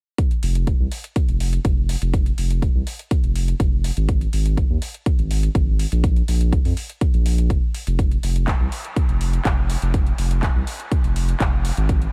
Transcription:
0.18 kick, closed hi-hat
0.31 closed hi-hat
0.43 F1, open hi-hat
0.55 closed hi-hat
0.67 kick, closed hi-hat
0.80 C2
0.92 open hi-hat
1.04 closed hi-hat
1.16 kick, closed hi-hat
1.29 F1, closed hi-hat
1.40 open hi-hat
1.53 closed hi-hat
1.65 F1, kick, closed hi-hat
1.89 open hi-hat
2.02 F1, closed hi-hat
2.14 kick, closed hi-hat
2.26 closed hi-hat
2.38 F1, open hi-hat
2.51 closed hi-hat
2.62 kick, closed hi-hat
2.75 C2
2.87 open hi-hat
2.99 closed hi-hat
3.11 kick, closed hi-hat
3.24 F1, closed hi-hat
3.36 open hi-hat
3.48 closed hi-hat
3.60 F1, kick, closed hi-hat
3.84 open hi-hat
3.97 G#1, closed hi-hat
4.09 kick, closed hi-hat
4.21 closed hi-hat
4.33 G#1, open hi-hat
4.46 closed hi-hat
4.57 kick, closed hi-hat
4.70 D#2
4.82 open hi-hat
4.94 closed hi-hat
5.06 kick, closed hi-hat
5.19 G#1, closed hi-hat
5.31 open hi-hat
5.43 closed hi-hat
5.55 G#1, kick, closed hi-hat
5.79 open hi-hat
5.92 A#1, closed hi-hat
6.04 kick, closed hi-hat
6.16 closed hi-hat
6.28 A#1, open hi-hat
6.41 closed hi-hat
6.53 kick, closed hi-hat
6.65 F2, open hi-hat
6.77 open hi-hat
6.90 closed hi-hat
7.01 kick, closed hi-hat
7.14 A#1, closed hi-hat
7.26 open hi-hat
7.38 closed hi-hat
7.50 F1, kick, closed hi-hat
7.75 open hi-hat
7.87 F1, closed hi-hat
7.99 kick, closed hi-hat
8.11 closed hi-hat
8.23 F1, open hi-hat
8.36 closed hi-hat
8.48 kick, clap, closed hi-hat
8.60 C2
8.72 open hi-hat
8.85 closed hi-hat
8.96 kick, closed hi-hat
9.09 F1, closed hi-hat
9.21 open hi-hat
9.33 closed hi-hat
9.45 F1, kick, clap, closed hi-hat
9.70 open hi-hat
9.82 F1, closed hi-hat
9.94 kick, closed hi-hat
10.07 closed hi-hat
10.18 F1, open hi-hat
10.31 closed hi-hat
10.43 kick, clap, closed hi-hat
10.55 C2
10.67 open hi-hat
10.80 closed hi-hat
10.92 kick, closed hi-hat
11.04 F1, closed hi-hat
11.16 open hi-hat
11.29 closed hi-hat
11.40 F1, kick, clap, closed hi-hat
11.65 open hi-hat
11.77 G#1, closed hi-hat
11.89 kick, closed hi-hat
12.02 closed hi-hat

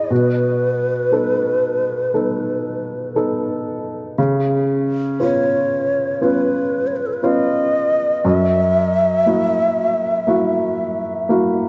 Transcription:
Already playing: B3 D#4 E4 G#4 D#5
0.11 B2 B4
1.12 B3 D#4 A4
2.14 B3 D#4 A4
3.15 B3 D#4 A4
4.18 C#3
5.20 B3 C#4 F4 C#5
6.21 B3 C#4 F4 B4
6.87 C#5
6.96 B4
7.06 A4
7.13 B4
7.23 B3 C#4 F4 D#5
8.25 F#2 E5
9.26 A#3 E4 F#4
10.27 A#3 E4 F#4
11.29 A#3 E4 F#4

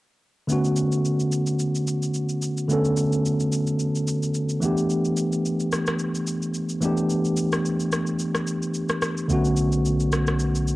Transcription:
0.47 D3 A3 B3 C#4, shaker
0.52 F#4
0.65 shaker
0.76 shaker
0.92 shaker
1.05 shaker
1.20 shaker
1.32 shaker
1.47 shaker
1.59 shaker
1.75 shaker
1.87 shaker
2.02 shaker
2.14 shaker
2.29 shaker
2.42 shaker
2.57 shaker
2.68 D3 A3 B3 C#4, shaker
2.73 A4
2.85 shaker
2.97 shaker
3.12 shaker
3.26 shaker
3.40 shaker
3.52 shaker
3.67 shaker
3.79 shaker
3.95 shaker
4.08 shaker
4.23 shaker
4.34 shaker
4.49 shaker
4.60 E3 A3 B3 D4, shaker
4.65 G4
4.77 shaker
4.90 shaker
5.05 shaker
5.17 shaker
5.32 shaker
5.46 shaker
5.60 shaker
5.72 cross-stick, shaker
5.87 cross-stick, shaker
5.99 shaker
6.15 shaker
6.27 shaker
6.42 shaker
6.54 shaker
6.69 shaker
6.80 E3 A3 B3 D4, shaker
6.85 G4
6.97 shaker
7.10 shaker
7.25 shaker
7.37 shaker
7.52 cross-stick, shaker
7.66 shaker
7.80 shaker
7.92 cross-stick, shaker
8.07 shaker
8.19 shaker
8.35 cross-stick, shaker
8.47 shaker
8.63 shaker
8.74 shaker
8.89 cross-stick, shaker
9.02 cross-stick, shaker
9.17 shaker
9.28 B1 D3 A3 B3 C#4, shaker
9.33 F#4
9.45 shaker
9.57 shaker
9.72 shaker
9.85 shaker
10.00 shaker
10.12 cross-stick, shaker
10.27 cross-stick, shaker
10.39 shaker
10.55 shaker
10.68 shaker

